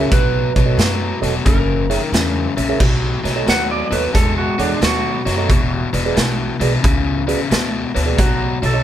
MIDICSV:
0, 0, Header, 1, 7, 480
1, 0, Start_track
1, 0, Key_signature, 5, "major"
1, 0, Tempo, 671892
1, 83, Time_signature, 4, 2, 24, 8
1, 6311, End_track
2, 0, Start_track
2, 0, Title_t, "Reed electric piano"
2, 0, Program_c, 0, 4
2, 0, Note_on_c, 0, 68, 58
2, 0, Note_on_c, 0, 70, 60
2, 0, Note_on_c, 0, 73, 53
2, 0, Note_on_c, 0, 76, 65
2, 77, Note_off_c, 0, 73, 0
2, 78, Note_off_c, 0, 68, 0
2, 78, Note_off_c, 0, 70, 0
2, 78, Note_off_c, 0, 76, 0
2, 389, Note_on_c, 0, 73, 63
2, 394, Note_on_c, 0, 75, 74
2, 435, Note_off_c, 0, 73, 0
2, 437, Note_off_c, 0, 75, 0
2, 469, Note_on_c, 0, 66, 60
2, 469, Note_on_c, 0, 69, 57
2, 469, Note_on_c, 0, 75, 71
2, 470, Note_on_c, 0, 73, 55
2, 556, Note_off_c, 0, 66, 0
2, 556, Note_off_c, 0, 69, 0
2, 556, Note_off_c, 0, 73, 0
2, 556, Note_off_c, 0, 75, 0
2, 866, Note_on_c, 0, 66, 66
2, 868, Note_on_c, 0, 69, 72
2, 869, Note_on_c, 0, 73, 69
2, 869, Note_on_c, 0, 75, 81
2, 954, Note_off_c, 0, 66, 0
2, 955, Note_off_c, 0, 69, 0
2, 956, Note_off_c, 0, 73, 0
2, 956, Note_off_c, 0, 75, 0
2, 1354, Note_on_c, 0, 68, 62
2, 1354, Note_on_c, 0, 70, 61
2, 1354, Note_on_c, 0, 73, 64
2, 1356, Note_on_c, 0, 76, 70
2, 1438, Note_off_c, 0, 68, 0
2, 1438, Note_off_c, 0, 70, 0
2, 1438, Note_off_c, 0, 73, 0
2, 1439, Note_off_c, 0, 76, 0
2, 1834, Note_on_c, 0, 73, 74
2, 1837, Note_on_c, 0, 76, 92
2, 1877, Note_off_c, 0, 73, 0
2, 1879, Note_off_c, 0, 76, 0
2, 1922, Note_on_c, 0, 68, 72
2, 1923, Note_on_c, 0, 73, 65
2, 1924, Note_on_c, 0, 70, 63
2, 1925, Note_on_c, 0, 76, 79
2, 2002, Note_off_c, 0, 68, 0
2, 2003, Note_off_c, 0, 73, 0
2, 2004, Note_off_c, 0, 70, 0
2, 2004, Note_off_c, 0, 76, 0
2, 2323, Note_on_c, 0, 73, 77
2, 2324, Note_on_c, 0, 75, 86
2, 2362, Note_off_c, 0, 73, 0
2, 2362, Note_off_c, 0, 75, 0
2, 2399, Note_on_c, 0, 69, 53
2, 2399, Note_on_c, 0, 73, 52
2, 2400, Note_on_c, 0, 66, 61
2, 2404, Note_on_c, 0, 75, 73
2, 2481, Note_off_c, 0, 66, 0
2, 2481, Note_off_c, 0, 69, 0
2, 2481, Note_off_c, 0, 73, 0
2, 2484, Note_off_c, 0, 75, 0
2, 2802, Note_on_c, 0, 66, 54
2, 2802, Note_on_c, 0, 69, 54
2, 2802, Note_on_c, 0, 73, 54
2, 2804, Note_on_c, 0, 75, 66
2, 2882, Note_off_c, 0, 66, 0
2, 2882, Note_off_c, 0, 69, 0
2, 2882, Note_off_c, 0, 73, 0
2, 2883, Note_off_c, 0, 75, 0
2, 3283, Note_on_c, 0, 73, 63
2, 3285, Note_on_c, 0, 66, 67
2, 3286, Note_on_c, 0, 78, 70
2, 3287, Note_on_c, 0, 69, 62
2, 3363, Note_off_c, 0, 73, 0
2, 3364, Note_off_c, 0, 66, 0
2, 3364, Note_off_c, 0, 69, 0
2, 3364, Note_off_c, 0, 78, 0
2, 3757, Note_on_c, 0, 73, 74
2, 3759, Note_on_c, 0, 75, 78
2, 3799, Note_off_c, 0, 73, 0
2, 3800, Note_off_c, 0, 75, 0
2, 3838, Note_on_c, 0, 66, 60
2, 3841, Note_on_c, 0, 73, 56
2, 3842, Note_on_c, 0, 69, 60
2, 3843, Note_on_c, 0, 75, 69
2, 3921, Note_off_c, 0, 66, 0
2, 3922, Note_off_c, 0, 73, 0
2, 3923, Note_off_c, 0, 69, 0
2, 3923, Note_off_c, 0, 75, 0
2, 4238, Note_on_c, 0, 71, 75
2, 4244, Note_on_c, 0, 74, 92
2, 4280, Note_off_c, 0, 71, 0
2, 4283, Note_off_c, 0, 74, 0
2, 4326, Note_on_c, 0, 66, 69
2, 4326, Note_on_c, 0, 71, 69
2, 4327, Note_on_c, 0, 74, 78
2, 4328, Note_on_c, 0, 68, 65
2, 4405, Note_off_c, 0, 66, 0
2, 4405, Note_off_c, 0, 71, 0
2, 4405, Note_off_c, 0, 74, 0
2, 4406, Note_off_c, 0, 68, 0
2, 4722, Note_on_c, 0, 66, 74
2, 4726, Note_on_c, 0, 74, 76
2, 4727, Note_on_c, 0, 68, 65
2, 4727, Note_on_c, 0, 71, 65
2, 4803, Note_off_c, 0, 66, 0
2, 4805, Note_off_c, 0, 68, 0
2, 4805, Note_off_c, 0, 71, 0
2, 4805, Note_off_c, 0, 74, 0
2, 5198, Note_on_c, 0, 68, 75
2, 5199, Note_on_c, 0, 66, 87
2, 5200, Note_on_c, 0, 71, 79
2, 5200, Note_on_c, 0, 74, 86
2, 5281, Note_off_c, 0, 66, 0
2, 5281, Note_off_c, 0, 68, 0
2, 5282, Note_off_c, 0, 71, 0
2, 5282, Note_off_c, 0, 74, 0
2, 5675, Note_on_c, 0, 71, 83
2, 5677, Note_on_c, 0, 73, 99
2, 5719, Note_off_c, 0, 71, 0
2, 5720, Note_off_c, 0, 73, 0
2, 5757, Note_on_c, 0, 66, 64
2, 5759, Note_on_c, 0, 71, 55
2, 5761, Note_on_c, 0, 68, 57
2, 5762, Note_on_c, 0, 74, 64
2, 5841, Note_off_c, 0, 66, 0
2, 5842, Note_off_c, 0, 71, 0
2, 5843, Note_off_c, 0, 68, 0
2, 5844, Note_off_c, 0, 74, 0
2, 6162, Note_on_c, 0, 73, 68
2, 6165, Note_on_c, 0, 75, 76
2, 6203, Note_off_c, 0, 73, 0
2, 6204, Note_off_c, 0, 75, 0
2, 6240, Note_on_c, 0, 66, 64
2, 6241, Note_on_c, 0, 69, 58
2, 6242, Note_on_c, 0, 73, 61
2, 6244, Note_on_c, 0, 75, 71
2, 6311, Note_off_c, 0, 66, 0
2, 6311, Note_off_c, 0, 69, 0
2, 6311, Note_off_c, 0, 73, 0
2, 6311, Note_off_c, 0, 75, 0
2, 6311, End_track
3, 0, Start_track
3, 0, Title_t, "Electric slide guitar"
3, 0, Program_c, 1, 29
3, 0, Note_on_c, 1, 66, 79
3, 83, Note_on_c, 1, 71, 91
3, 108, Note_off_c, 1, 66, 0
3, 1036, Note_off_c, 1, 71, 0
3, 1039, Note_on_c, 1, 70, 75
3, 1809, Note_off_c, 1, 70, 0
3, 6311, End_track
4, 0, Start_track
4, 0, Title_t, "Clean electric guitar"
4, 0, Program_c, 2, 27
4, 2497, Note_on_c, 2, 78, 97
4, 2645, Note_off_c, 2, 78, 0
4, 2652, Note_on_c, 2, 74, 75
4, 2802, Note_off_c, 2, 74, 0
4, 2805, Note_on_c, 2, 71, 86
4, 2959, Note_off_c, 2, 71, 0
4, 2963, Note_on_c, 2, 69, 68
4, 3118, Note_off_c, 2, 69, 0
4, 3127, Note_on_c, 2, 66, 91
4, 3280, Note_off_c, 2, 66, 0
4, 3284, Note_on_c, 2, 62, 75
4, 3438, Note_off_c, 2, 62, 0
4, 3460, Note_on_c, 2, 66, 82
4, 4383, Note_off_c, 2, 66, 0
4, 5855, Note_on_c, 2, 66, 87
4, 6161, Note_off_c, 2, 66, 0
4, 6182, Note_on_c, 2, 69, 79
4, 6311, Note_off_c, 2, 69, 0
4, 6311, End_track
5, 0, Start_track
5, 0, Title_t, "Overdriven electric guitar"
5, 0, Program_c, 3, 29
5, 81, Note_on_c, 3, 47, 84
5, 86, Note_on_c, 3, 54, 94
5, 367, Note_off_c, 3, 47, 0
5, 370, Note_off_c, 3, 54, 0
5, 403, Note_on_c, 3, 47, 69
5, 406, Note_on_c, 3, 54, 68
5, 548, Note_off_c, 3, 47, 0
5, 549, Note_off_c, 3, 54, 0
5, 563, Note_on_c, 3, 47, 72
5, 568, Note_on_c, 3, 54, 71
5, 848, Note_off_c, 3, 47, 0
5, 851, Note_off_c, 3, 54, 0
5, 877, Note_on_c, 3, 47, 71
5, 880, Note_on_c, 3, 54, 75
5, 1024, Note_off_c, 3, 47, 0
5, 1026, Note_off_c, 3, 54, 0
5, 1040, Note_on_c, 3, 42, 68
5, 1043, Note_on_c, 3, 49, 81
5, 1327, Note_off_c, 3, 42, 0
5, 1328, Note_off_c, 3, 49, 0
5, 1356, Note_on_c, 3, 42, 64
5, 1361, Note_on_c, 3, 51, 73
5, 1504, Note_off_c, 3, 42, 0
5, 1506, Note_off_c, 3, 51, 0
5, 1519, Note_on_c, 3, 42, 73
5, 1519, Note_on_c, 3, 49, 83
5, 1806, Note_off_c, 3, 42, 0
5, 1806, Note_off_c, 3, 49, 0
5, 1833, Note_on_c, 3, 42, 76
5, 1839, Note_on_c, 3, 49, 78
5, 1983, Note_off_c, 3, 42, 0
5, 1985, Note_off_c, 3, 49, 0
5, 1996, Note_on_c, 3, 47, 77
5, 2000, Note_on_c, 3, 54, 74
5, 2285, Note_off_c, 3, 47, 0
5, 2287, Note_off_c, 3, 54, 0
5, 2311, Note_on_c, 3, 47, 62
5, 2315, Note_on_c, 3, 54, 68
5, 2461, Note_off_c, 3, 47, 0
5, 2463, Note_off_c, 3, 54, 0
5, 2475, Note_on_c, 3, 47, 65
5, 2477, Note_on_c, 3, 54, 80
5, 2764, Note_off_c, 3, 47, 0
5, 2766, Note_off_c, 3, 54, 0
5, 2790, Note_on_c, 3, 47, 72
5, 2793, Note_on_c, 3, 54, 73
5, 2941, Note_off_c, 3, 47, 0
5, 2943, Note_off_c, 3, 54, 0
5, 2953, Note_on_c, 3, 47, 78
5, 2958, Note_on_c, 3, 56, 79
5, 3244, Note_off_c, 3, 47, 0
5, 3246, Note_off_c, 3, 56, 0
5, 3272, Note_on_c, 3, 47, 59
5, 3275, Note_on_c, 3, 56, 70
5, 3422, Note_off_c, 3, 47, 0
5, 3424, Note_off_c, 3, 56, 0
5, 3438, Note_on_c, 3, 47, 74
5, 3441, Note_on_c, 3, 54, 83
5, 3726, Note_off_c, 3, 47, 0
5, 3728, Note_off_c, 3, 54, 0
5, 3753, Note_on_c, 3, 47, 63
5, 3755, Note_on_c, 3, 54, 77
5, 3903, Note_off_c, 3, 47, 0
5, 3904, Note_off_c, 3, 54, 0
5, 3916, Note_on_c, 3, 40, 74
5, 3919, Note_on_c, 3, 47, 83
5, 4205, Note_off_c, 3, 40, 0
5, 4207, Note_off_c, 3, 47, 0
5, 4235, Note_on_c, 3, 40, 62
5, 4236, Note_on_c, 3, 47, 76
5, 4384, Note_off_c, 3, 40, 0
5, 4385, Note_off_c, 3, 47, 0
5, 4393, Note_on_c, 3, 40, 62
5, 4398, Note_on_c, 3, 47, 72
5, 4684, Note_off_c, 3, 40, 0
5, 4686, Note_off_c, 3, 47, 0
5, 4711, Note_on_c, 3, 40, 73
5, 4715, Note_on_c, 3, 47, 81
5, 4862, Note_off_c, 3, 40, 0
5, 4864, Note_off_c, 3, 47, 0
5, 4875, Note_on_c, 3, 40, 75
5, 4878, Note_on_c, 3, 49, 84
5, 5165, Note_off_c, 3, 40, 0
5, 5167, Note_off_c, 3, 49, 0
5, 5193, Note_on_c, 3, 40, 63
5, 5195, Note_on_c, 3, 49, 77
5, 5343, Note_off_c, 3, 40, 0
5, 5345, Note_off_c, 3, 49, 0
5, 5359, Note_on_c, 3, 40, 78
5, 5364, Note_on_c, 3, 47, 86
5, 5648, Note_off_c, 3, 40, 0
5, 5650, Note_off_c, 3, 47, 0
5, 5676, Note_on_c, 3, 40, 76
5, 5681, Note_on_c, 3, 47, 79
5, 5825, Note_off_c, 3, 40, 0
5, 5828, Note_off_c, 3, 47, 0
5, 5841, Note_on_c, 3, 47, 75
5, 5846, Note_on_c, 3, 54, 92
5, 6129, Note_off_c, 3, 47, 0
5, 6131, Note_off_c, 3, 54, 0
5, 6159, Note_on_c, 3, 47, 69
5, 6163, Note_on_c, 3, 54, 69
5, 6307, Note_off_c, 3, 47, 0
5, 6309, Note_off_c, 3, 54, 0
5, 6311, End_track
6, 0, Start_track
6, 0, Title_t, "Upright bass"
6, 0, Program_c, 4, 32
6, 84, Note_on_c, 4, 35, 87
6, 319, Note_off_c, 4, 35, 0
6, 401, Note_on_c, 4, 35, 77
6, 521, Note_off_c, 4, 35, 0
6, 552, Note_on_c, 4, 42, 87
6, 792, Note_off_c, 4, 42, 0
6, 873, Note_on_c, 4, 28, 83
6, 996, Note_off_c, 4, 28, 0
6, 1044, Note_on_c, 4, 30, 86
6, 1400, Note_off_c, 4, 30, 0
6, 1517, Note_on_c, 4, 40, 83
6, 1755, Note_off_c, 4, 40, 0
6, 1837, Note_on_c, 4, 34, 75
6, 1959, Note_off_c, 4, 34, 0
6, 2003, Note_on_c, 4, 35, 89
6, 2238, Note_off_c, 4, 35, 0
6, 2318, Note_on_c, 4, 35, 74
6, 2439, Note_off_c, 4, 35, 0
6, 2480, Note_on_c, 4, 39, 85
6, 2717, Note_off_c, 4, 39, 0
6, 2796, Note_on_c, 4, 39, 86
6, 2918, Note_off_c, 4, 39, 0
6, 2962, Note_on_c, 4, 40, 85
6, 3198, Note_off_c, 4, 40, 0
6, 3278, Note_on_c, 4, 40, 84
6, 3399, Note_off_c, 4, 40, 0
6, 3440, Note_on_c, 4, 39, 94
6, 3677, Note_off_c, 4, 39, 0
6, 3760, Note_on_c, 4, 42, 85
6, 3928, Note_on_c, 4, 28, 87
6, 3938, Note_off_c, 4, 42, 0
6, 4162, Note_off_c, 4, 28, 0
6, 4238, Note_on_c, 4, 28, 87
6, 4359, Note_off_c, 4, 28, 0
6, 4404, Note_on_c, 4, 35, 85
6, 4639, Note_off_c, 4, 35, 0
6, 4719, Note_on_c, 4, 35, 89
6, 4840, Note_off_c, 4, 35, 0
6, 4886, Note_on_c, 4, 37, 90
6, 5242, Note_off_c, 4, 37, 0
6, 5367, Note_on_c, 4, 38, 88
6, 5602, Note_off_c, 4, 38, 0
6, 5686, Note_on_c, 4, 38, 85
6, 5805, Note_off_c, 4, 38, 0
6, 5847, Note_on_c, 4, 35, 82
6, 6082, Note_off_c, 4, 35, 0
6, 6163, Note_on_c, 4, 35, 89
6, 6284, Note_off_c, 4, 35, 0
6, 6311, End_track
7, 0, Start_track
7, 0, Title_t, "Drums"
7, 83, Note_on_c, 9, 42, 78
7, 84, Note_on_c, 9, 36, 95
7, 154, Note_off_c, 9, 42, 0
7, 155, Note_off_c, 9, 36, 0
7, 400, Note_on_c, 9, 42, 50
7, 401, Note_on_c, 9, 36, 73
7, 472, Note_off_c, 9, 36, 0
7, 472, Note_off_c, 9, 42, 0
7, 562, Note_on_c, 9, 42, 73
7, 567, Note_on_c, 9, 38, 106
7, 633, Note_off_c, 9, 42, 0
7, 639, Note_off_c, 9, 38, 0
7, 881, Note_on_c, 9, 42, 59
7, 953, Note_off_c, 9, 42, 0
7, 1041, Note_on_c, 9, 42, 83
7, 1043, Note_on_c, 9, 36, 103
7, 1113, Note_off_c, 9, 42, 0
7, 1114, Note_off_c, 9, 36, 0
7, 1363, Note_on_c, 9, 42, 61
7, 1434, Note_off_c, 9, 42, 0
7, 1526, Note_on_c, 9, 42, 79
7, 1532, Note_on_c, 9, 38, 105
7, 1597, Note_off_c, 9, 42, 0
7, 1603, Note_off_c, 9, 38, 0
7, 1841, Note_on_c, 9, 42, 58
7, 1912, Note_off_c, 9, 42, 0
7, 2001, Note_on_c, 9, 49, 92
7, 2002, Note_on_c, 9, 36, 93
7, 2072, Note_off_c, 9, 49, 0
7, 2073, Note_off_c, 9, 36, 0
7, 2323, Note_on_c, 9, 42, 49
7, 2329, Note_on_c, 9, 38, 29
7, 2395, Note_off_c, 9, 42, 0
7, 2400, Note_off_c, 9, 38, 0
7, 2484, Note_on_c, 9, 42, 77
7, 2489, Note_on_c, 9, 38, 98
7, 2555, Note_off_c, 9, 42, 0
7, 2561, Note_off_c, 9, 38, 0
7, 2803, Note_on_c, 9, 42, 56
7, 2874, Note_off_c, 9, 42, 0
7, 2963, Note_on_c, 9, 42, 75
7, 2964, Note_on_c, 9, 36, 100
7, 2968, Note_on_c, 9, 38, 29
7, 3034, Note_off_c, 9, 42, 0
7, 3035, Note_off_c, 9, 36, 0
7, 3040, Note_off_c, 9, 38, 0
7, 3282, Note_on_c, 9, 42, 58
7, 3354, Note_off_c, 9, 42, 0
7, 3442, Note_on_c, 9, 42, 73
7, 3448, Note_on_c, 9, 38, 106
7, 3514, Note_off_c, 9, 42, 0
7, 3520, Note_off_c, 9, 38, 0
7, 3763, Note_on_c, 9, 42, 55
7, 3768, Note_on_c, 9, 38, 32
7, 3834, Note_off_c, 9, 42, 0
7, 3840, Note_off_c, 9, 38, 0
7, 3926, Note_on_c, 9, 36, 100
7, 3928, Note_on_c, 9, 42, 78
7, 3998, Note_off_c, 9, 36, 0
7, 3999, Note_off_c, 9, 42, 0
7, 4242, Note_on_c, 9, 42, 58
7, 4313, Note_off_c, 9, 42, 0
7, 4406, Note_on_c, 9, 42, 74
7, 4411, Note_on_c, 9, 38, 101
7, 4477, Note_off_c, 9, 42, 0
7, 4483, Note_off_c, 9, 38, 0
7, 4722, Note_on_c, 9, 42, 64
7, 4793, Note_off_c, 9, 42, 0
7, 4887, Note_on_c, 9, 36, 111
7, 4888, Note_on_c, 9, 42, 75
7, 4959, Note_off_c, 9, 36, 0
7, 4959, Note_off_c, 9, 42, 0
7, 5206, Note_on_c, 9, 42, 61
7, 5277, Note_off_c, 9, 42, 0
7, 5369, Note_on_c, 9, 42, 87
7, 5374, Note_on_c, 9, 38, 112
7, 5440, Note_off_c, 9, 42, 0
7, 5446, Note_off_c, 9, 38, 0
7, 5688, Note_on_c, 9, 42, 60
7, 5759, Note_off_c, 9, 42, 0
7, 5847, Note_on_c, 9, 42, 83
7, 5848, Note_on_c, 9, 36, 98
7, 5919, Note_off_c, 9, 36, 0
7, 5919, Note_off_c, 9, 42, 0
7, 6167, Note_on_c, 9, 42, 55
7, 6238, Note_off_c, 9, 42, 0
7, 6311, End_track
0, 0, End_of_file